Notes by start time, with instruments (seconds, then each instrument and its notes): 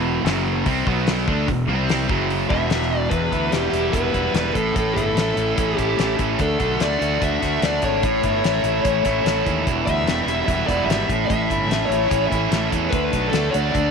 Already playing: fingered electric bass E1, distorted electric guitar E2 B2 E3, overdriven electric guitar E2 B2 E3
0.24 fingered electric bass F#1, distorted electric guitar F#2 C#3 F#3, overdriven electric guitar F#2 C#3 F#3, snare, open hi-hat
0.65 fingered electric bass C2, distorted electric guitar C3 G3 C4, overdriven electric guitar C3 G3 C4, kick, open hi-hat
0.87 fingered electric bass B1, distorted electric guitar B2 F#3 B3, overdriven electric guitar B2 F#3 B3, kick
1.07 snare, open hi-hat
1.18 snare
1.27 fingered electric bass D2, distorted electric guitar D3 A3 D4, overdriven electric guitar D3 A3 D4, kick
1.47 fingered electric bass E1, overdriven electric guitar E2 B2, distorted electric guitar E2 B2, kick, open hi-hat
1.67 fingered electric bass C2, overdriven electric guitar C3 G3 C4, distorted electric guitar C3 G3 C4
1.89 snare, open hi-hat
2.09 fingered electric bass F#1, distorted electric guitar F#2 C#3 F#3, overdriven electric guitar F#2 C#3 F#3, kick
2.30 open hi-hat
2.48 fingered electric bass E1, distorted electric guitar E2 B2 E3, overdriven electric guitar E2 B2 E3, lead electric guitar E5, kick
2.70 snare, open hi-hat
2.83 snare
2.98 lead electric guitar D5
3.10 fingered electric bass E1, distorted electric guitar E2, overdriven electric guitar E2, lead electric guitar B4, kick, closed hi-hat
3.32 fingered electric bass D2, distorted electric guitar E3, overdriven electric guitar E4, kick, closed hi-hat
3.51 fingered electric bass E1, distorted electric guitar G3, overdriven electric guitar B3, lead electric guitar G4, snare, closed hi-hat
3.71 fingered electric bass E1, overdriven electric guitar G3, distorted electric guitar E4, closed hi-hat
3.92 fingered electric bass E1, overdriven electric guitar E3, distorted electric guitar B3, lead electric guitar B4, kick, closed hi-hat
4.13 fingered electric bass E1, overdriven electric guitar G3, distorted electric guitar E4, kick, closed hi-hat
4.33 fingered electric bass E1, distorted electric guitar G3, overdriven electric guitar B3, snare, closed hi-hat
4.54 fingered electric bass A1, distorted electric guitar A2, overdriven electric guitar A2, lead electric guitar A4, kick, closed hi-hat
4.76 fingered electric bass A1, distorted electric guitar A2, overdriven electric guitar A2, lead electric guitar A4, kick, closed hi-hat
4.94 fingered electric bass G1, distorted electric guitar E3, overdriven electric guitar E4, lead electric guitar A4, kick, closed hi-hat
5.15 fingered electric bass A1, distorted electric guitar A3, overdriven electric guitar C#4, snare, closed hi-hat
5.36 fingered electric bass A1, overdriven electric guitar A3, distorted electric guitar E4, closed hi-hat
5.57 fingered electric bass A1, overdriven electric guitar E3, distorted electric guitar C#4, kick, closed hi-hat
5.76 fingered electric bass A1, overdriven electric guitar A3, distorted electric guitar E4, lead electric guitar G4, kick, closed hi-hat
5.98 fingered electric bass A1, distorted electric guitar A3, overdriven electric guitar C#4, snare, closed hi-hat
6.19 fingered electric bass A1, overdriven electric guitar E3, distorted electric guitar C#4, kick, closed hi-hat
6.39 fingered electric bass D2, overdriven electric guitar D3, distorted electric guitar D3, lead electric guitar A4, kick, closed hi-hat
6.59 fingered electric bass B1, distorted electric guitar D3, overdriven electric guitar F#4, kick, closed hi-hat
6.80 fingered electric bass D2, distorted electric guitar A3, overdriven electric guitar D4, lead electric guitar D5, snare, closed hi-hat
6.99 fingered electric bass D2, overdriven electric guitar A3, distorted electric guitar F#4, closed hi-hat
7.20 fingered electric bass D2, overdriven electric guitar D3, distorted electric guitar D4, lead electric guitar E5, kick, closed hi-hat
7.41 fingered electric bass D2, overdriven electric guitar A3, distorted electric guitar F#4, kick, snare, closed hi-hat
7.62 fingered electric bass D2, distorted electric guitar A3, overdriven electric guitar D4, lead electric guitar D5, snare, closed hi-hat
7.82 fingered electric bass G#1, overdriven electric guitar D3, distorted electric guitar D4, lead electric guitar C#5, kick, closed hi-hat
8.02 fingered electric bass A1, distorted electric guitar A2, overdriven electric guitar A2, kick, closed hi-hat
8.22 fingered electric bass G1, distorted electric guitar E3, overdriven electric guitar E4, kick, closed hi-hat
8.44 fingered electric bass A1, distorted electric guitar A3, overdriven electric guitar C#4, snare, closed hi-hat
8.63 fingered electric bass A1, overdriven electric guitar A3, distorted electric guitar E4, closed hi-hat
8.85 fingered electric bass A1, overdriven electric guitar E3, distorted electric guitar C#4, kick, closed hi-hat
9.05 fingered electric bass A1, overdriven electric guitar A3, distorted electric guitar E4, kick, snare, closed hi-hat
9.24 fingered electric bass A1, distorted electric guitar A3, overdriven electric guitar C#4, snare, closed hi-hat
9.45 fingered electric bass D#2, overdriven electric guitar E3, distorted electric guitar C#4, kick, closed hi-hat
9.65 fingered electric bass E1, distorted electric guitar E2, overdriven electric guitar E2, steel-string acoustic guitar E2 B2 E3 G3 B3 E4, kick, closed hi-hat
9.85 fingered electric bass D2, distorted electric guitar E3, steel-string acoustic guitar G3 B3 E4, overdriven electric guitar E4, lead electric guitar E5, kick, closed hi-hat
9.90 steel-string acoustic guitar E3
10.04 fingered electric bass E1, steel-string acoustic guitar E2 B2, distorted electric guitar G3, closed hi-hat
10.08 steel-string acoustic guitar E3 G3 B3 E4, overdriven electric guitar B3, snare
10.26 fingered electric bass E1, steel-string acoustic guitar E3 G3 B3 E4, overdriven electric guitar G3, distorted electric guitar E4, closed hi-hat
10.46 fingered electric bass E1, overdriven electric guitar E3, steel-string acoustic guitar E3 G3 B3 E4, distorted electric guitar B3, lead electric guitar E5, kick, closed hi-hat
10.67 fingered electric bass E1, steel-string acoustic guitar E3 G3 B3 E4, overdriven electric guitar G3, distorted electric guitar E4, lead electric guitar D5, kick, closed hi-hat
10.85 fingered electric bass G#1, steel-string acoustic guitar E2 B2 E3 G3 B3, distorted electric guitar G3, lead electric guitar E5
10.90 overdriven electric guitar B3, snare, closed hi-hat
11.08 fingered electric bass A1, distorted electric guitar A2, overdriven electric guitar A2, steel-string acoustic guitar A3 C#4 E4, kick, closed hi-hat
11.26 steel-string acoustic guitar A2 E3 A3 C#4 E4, distorted electric guitar A2, lead electric guitar E5
11.30 fingered electric bass A1, overdriven electric guitar A2, kick, closed hi-hat
11.49 fingered electric bass G1, distorted electric guitar E3, steel-string acoustic guitar A3 C#4 E4, overdriven electric guitar E4, kick, closed hi-hat
11.67 fingered electric bass A1, steel-string acoustic guitar A2 E3 A3, distorted electric guitar A3, closed hi-hat
11.71 steel-string acoustic guitar C#4, overdriven electric guitar C#4, snare
11.86 fingered electric bass A1, distorted electric guitar E4, lead electric guitar C#5
11.90 overdriven electric guitar A3, steel-string acoustic guitar A3 C#4 E4, closed hi-hat
12.09 fingered electric bass A1, steel-string acoustic guitar E3 A3 C#4 E4, overdriven electric guitar E3, distorted electric guitar C#4, kick, closed hi-hat
12.27 distorted electric guitar E4, lead electric guitar E5
12.31 fingered electric bass A1, steel-string acoustic guitar A3 C#4 E4, overdriven electric guitar A3, kick, closed hi-hat
12.51 fingered electric bass A1, steel-string acoustic guitar A2 E3 A3 C#4 E4, distorted electric guitar A3, overdriven electric guitar C#4, snare, closed hi-hat
12.71 fingered electric bass E2, overdriven electric guitar E3, steel-string acoustic guitar A3 C#4 E4, distorted electric guitar C#4, kick, closed hi-hat
12.89 fingered electric bass D2, steel-string acoustic guitar D3 A3 D4 F#4, distorted electric guitar D3, overdriven electric guitar D3, lead electric guitar B4, kick, closed hi-hat
13.11 fingered electric bass B1, distorted electric guitar D3, steel-string acoustic guitar A3 D4 F#4, overdriven electric guitar F#4, kick, closed hi-hat
13.29 steel-string acoustic guitar D3 A3 D4 F#4, distorted electric guitar A3, lead electric guitar A4
13.33 fingered electric bass D2, overdriven electric guitar D4, snare, closed hi-hat
13.50 steel-string acoustic guitar D4 F#4, distorted electric guitar F#4, lead electric guitar D5
13.54 fingered electric bass D2, overdriven electric guitar A3, steel-string acoustic guitar A3, closed hi-hat
13.74 fingered electric bass D2, steel-string acoustic guitar D3 A3 D4 F#4, overdriven electric guitar D3, distorted electric guitar D4, kick, closed hi-hat